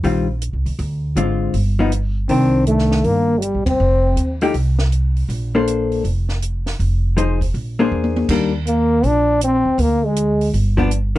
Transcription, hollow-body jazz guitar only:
0.04 0.26 D#3 medium
0.04 0.26 G3 soft
0.04 0.26 C4 medium
0.04 0.27 F4 medium
1.17 1.54 D3 medium
1.17 1.54 G#3 medium
1.17 1.54 C4 medium
1.17 1.55 F4 medium
1.79 1.91 F3 medium
1.79 1.91 B3 medium
1.79 1.91 D#4 medium
2.30 3.34 D#3 medium
2.30 3.35 D4 soft
4.42 4.53 F3 medium
4.42 4.54 A3 medium
4.42 4.54 D#4 medium
4.42 4.54 G4 medium
5.55 6.02 A#3 medium
5.55 6.02 D4 medium
5.55 6.03 A4 medium
5.55 6.03 C5 medium
7.17 7.39 F3 medium
7.17 7.39 D#4 medium
7.17 7.39 G#4 medium
7.17 7.39 C5 medium
7.79 8.27 A#3 medium
7.79 8.27 D4 medium
7.79 8.27 G#4 medium
7.79 8.27 C5 medium
8.30 8.51 D#3 medium
8.30 8.52 G3 medium
8.30 8.52 A#3 medium
8.30 8.52 D4 medium
10.77 10.89 F3 medium
10.77 10.90 B3 medium
10.77 10.90 D4 medium

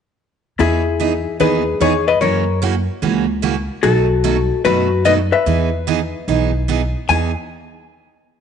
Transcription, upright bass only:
0.59 1.24 E2 medium
1.40 1.74 D#2 medium
1.80 2.15 E2 medium
2.21 2.86 F#2 medium
3.02 3.67 C#2 medium
3.84 4.49 B1 medium
4.65 5.30 F#2 medium
5.46 6.12 E2 medium
6.28 6.93 B1 medium
7.09 7.34 E2 medium

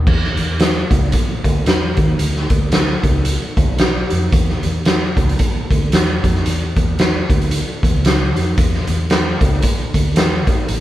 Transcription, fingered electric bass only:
0.07 0.33 E2 loud
0.39 0.82 E2 medium
0.91 1.09 C#2 medium
1.29 muted fingered electric bass stroke soft
1.44 1.63 D2 medium
1.67 1.92 E2 medium
1.98 2.16 D#2 medium
2.20 2.46 D2 medium
2.51 2.95 D2 medium
3.03 3.35 C#2 medium
3.58 3.69 D2 medium
3.69 4.04 B1 loud
4.12 4.29 F2 medium
4.33 4.58 E2 loud
4.65 5.08 E2 medium
5.17 5.35 C#2 medium
5.56 muted fingered electric bass stroke soft
5.71 5.88 D2 medium
5.93 6.18 E2 medium
6.24 6.42 F2 medium
6.47 6.72 E2 loud
6.77 7.20 E2 medium
7.30 7.60 D2 medium
7.83 7.92 E2 medium
7.94 8.36 C#2 medium
8.36 8.54 F2 medium
8.58 8.83 E2 loud
8.89 9.32 E2 medium
9.41 9.59 C#2 medium
9.79 muted fingered electric bass stroke soft
9.94 10.16 D2 medium
10.16 10.47 E2 medium
10.47 10.65 A#1 medium
10.69 10.80 A1 loud

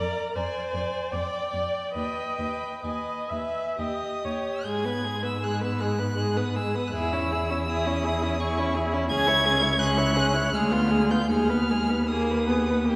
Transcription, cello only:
0.36 0.44 F2 soft
0.74 0.82 F2 soft
1.13 1.21 F2 soft
1.53 1.61 F2 soft
1.95 2.03 D#2 soft
2.39 2.47 D#2 soft
2.84 2.92 D#2 soft
3.31 3.39 D#2 soft
3.79 3.87 D#2 soft
4.24 4.32 D#2 soft
4.66 6.89 G#2 medium
6.93 9.12 E2 medium
9.10 10.53 C#2 medium
10.54 11.31 D2 medium
11.29 12.96 D#2 medium

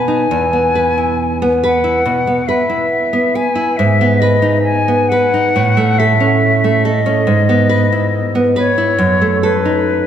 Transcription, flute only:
0.00 1.38 G#5 medium
1.62 2.49 F#5 medium
2.48 3.37 E5 medium
3.35 3.78 G#5 medium
3.77 4.21 E5 medium
4.20 4.63 D#5 medium
4.63 5.10 G#5 medium
5.09 6.00 F#5 medium
5.99 6.87 E5 medium
6.85 8.31 D#5 medium
8.57 9.42 C#5 medium
9.42 10.07 B4 medium

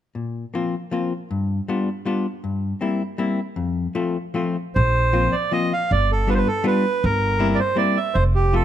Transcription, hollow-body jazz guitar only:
0.15 0.44 A#2 soft
0.54 0.75 F3 medium
0.54 0.74 A#3 soft
0.54 0.74 C4 soft
0.54 0.74 F4 medium
0.91 1.12 F3 medium
0.91 1.12 A#3 soft
0.91 1.12 C4 soft
0.91 1.12 F4 medium
1.31 1.59 G2 soft
1.68 1.88 G3 medium
1.68 1.89 B3 soft
1.68 1.89 D4 soft
1.68 1.88 F4 medium
2.05 2.26 G3 medium
2.05 2.26 B3 soft
2.05 2.26 D4 medium
2.05 2.26 F4 medium
2.44 2.72 G2 soft
2.81 3.02 G3 medium
2.81 3.02 A#3 soft
2.81 3.01 C4 soft
2.81 3.02 E4 medium
3.18 3.39 G3 medium
3.18 3.40 A#3 soft
3.18 3.39 C4 medium
3.18 3.39 E4 medium
3.56 3.86 F2 medium
3.95 4.16 F3 medium
3.95 4.16 A3 medium
3.95 4.16 C4 soft
3.95 4.16 F4 soft
4.34 4.56 F3 medium
4.34 4.56 A3 soft
4.34 4.56 C4 medium
4.34 4.56 F4 medium
5.13 5.34 F3 medium
5.13 5.34 A#3 soft
5.13 5.34 C4 soft
5.13 5.33 F4 medium
5.52 5.72 F3 medium
5.52 5.72 A#3 soft
5.52 5.72 C4 soft
5.52 5.72 F4 soft
6.27 6.48 G3 medium
6.27 6.48 B3 medium
6.27 6.48 D4 soft
6.27 6.48 F4 medium
6.64 6.84 G3 medium
6.64 6.85 B3 medium
6.64 6.84 D4 soft
6.64 6.85 F4 medium
7.39 7.60 G3 medium
7.39 7.60 A#3 medium
7.39 7.60 C4 soft
7.39 7.60 E4 medium
7.76 7.97 G3 medium
7.76 7.97 A#3 medium
7.76 7.97 C4 medium
7.76 7.97 E4 medium
8.53 8.65 F3 medium
8.53 8.65 A3 medium
8.53 8.65 C4 soft
8.53 8.65 F4 medium

